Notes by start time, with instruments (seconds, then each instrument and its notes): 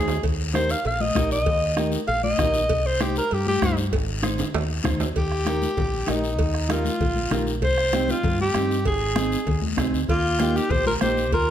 Already playing: fingered electric bass D#2, clean electric guitar D#4 G#4 C5, alto saxophone G#4
0.08 low timbale, short guiro
0.23 fingered electric bass D#2, bombo low, cowbell, long guiro
0.54 clean electric guitar D#4 G4 A#4, alto saxophone C5, bombo rim, high conga, short guiro
0.69 alto saxophone F5, short guiro
0.85 fingered electric bass A#1, alto saxophone F5, cowbell, long guiro
1.00 alto saxophone D#5, high conga
1.15 fingered electric bass A#1, clean electric guitar D#4 G4 A#4, bombo low, bombo rim, high conga, short guiro
1.31 alto saxophone D#5, short guiro
1.46 fingered electric bass D#2, bombo low, cowbell, long guiro
1.77 clean electric guitar D#4 G4 A#4, bombo rim, high conga, short guiro
1.92 short guiro
2.08 fingered electric bass A#1, alto saxophone F5, cowbell, long guiro
2.23 alto saxophone D#5, high conga
2.38 fingered electric bass A#1, clean electric guitar D#4 G4 A#4, bombo low, bombo rim, high conga, low conga, short guiro
2.54 short guiro
2.69 fingered electric bass C2, bombo low, cowbell, long guiro
2.86 alto saxophone C5
3.00 clean electric guitar D#4 G4 C5, alto saxophone G4, bombo rim, high conga, short guiro
3.16 alto saxophone A#4, short guiro
3.31 fingered electric bass G2, alto saxophone G4, cowbell, long guiro
3.47 alto saxophone G4, high conga
3.62 fingered electric bass G2, clean electric guitar D#4 G4 C5, bombo low, bombo rim, high conga, short guiro
3.77 short guiro
3.93 fingered electric bass G#1, bombo low, cowbell, long guiro
4.23 clean electric guitar D#4 G#4 C5, bombo rim, high conga, short guiro
4.38 low conga, high timbale, short guiro
4.54 fingered electric bass D#2, cowbell, low timbale, long guiro
4.84 fingered electric bass D#2, clean electric guitar D#4 G#4 C5, bombo low, bombo rim, high conga, low conga, short guiro
5.00 low timbale, short guiro
5.16 fingered electric bass D#2, alto saxophone G4, bombo low, cowbell, high conga, long guiro
5.32 bombo rim
5.46 clean electric guitar D#4 G4 A#4, bombo rim, cowbell, high conga, short guiro
5.62 high conga, short guiro
5.77 fingered electric bass A#1, bombo low, cowbell, high conga, low conga, long guiro
6.07 fingered electric bass A#1, clean electric guitar D#4 G4 A#4, alto saxophone D#4, bombo rim, cowbell, high conga, low timbale, short guiro
6.24 short guiro
6.39 fingered electric bass D#2, bombo low, cowbell, high conga, long guiro
6.54 bombo rim
6.69 clean electric guitar D#4 G4 A#4, alto saxophone F4, bombo rim, cowbell, high conga, short guiro
6.85 high conga, short guiro
7.01 fingered electric bass A#1, bombo low, cowbell, high conga, low conga, long guiro
7.16 high conga
7.31 fingered electric bass A#1, clean electric guitar D#4 G4 A#4, bombo rim, cowbell, high conga, low conga, short guiro
7.47 short guiro
7.62 fingered electric bass C2, alto saxophone C5, bombo low, cowbell, high conga, long guiro
7.78 bombo rim
7.93 clean electric guitar C4 D#4 G4, bombo rim, cowbell, high conga, short guiro
8.08 alto saxophone F4, high conga, short guiro
8.23 fingered electric bass G2, bombo low, cowbell, high conga, low conga, long guiro
8.39 alto saxophone G4, high conga
8.54 fingered electric bass G2, clean electric guitar C4 D#4 G4, bombo rim, cowbell, high conga, short guiro
8.71 short guiro
8.85 fingered electric bass G#1, alto saxophone G#4, bombo low, cowbell, high conga, long guiro
9.16 clean electric guitar C4 D#4 G#4, bombo rim, cowbell, high conga, short guiro
9.32 short guiro
9.47 fingered electric bass D#2, bombo low, cowbell, high conga, low conga, long guiro
9.62 high conga
9.77 fingered electric bass C2, clean electric guitar C4 D#4 G#4, bombo low, bombo rim, cowbell, high conga, low timbale, short guiro
9.94 fingered electric bass D2, short guiro
10.08 fingered electric bass D#2, clarinet A#3, alto saxophone F4, bombo low, cowbell, high conga, long guiro
10.39 clean electric guitar A#3 D#4 G4, bombo rim, cowbell, high conga, short guiro
10.56 clarinet D#4, alto saxophone G4, short guiro
10.70 fingered electric bass A#1, clarinet G4, alto saxophone C5, bombo low, cowbell, high conga, low conga, long guiro
10.86 clarinet F4, alto saxophone A#4, high conga
11.01 fingered electric bass A#1, clean electric guitar A#3 D#4 G4, clarinet G4, alto saxophone C5, bombo rim, cowbell, high conga, short guiro
11.17 short guiro
11.32 fingered electric bass D#2, clarinet F4, alto saxophone A#4, bombo low, cowbell, high conga, long guiro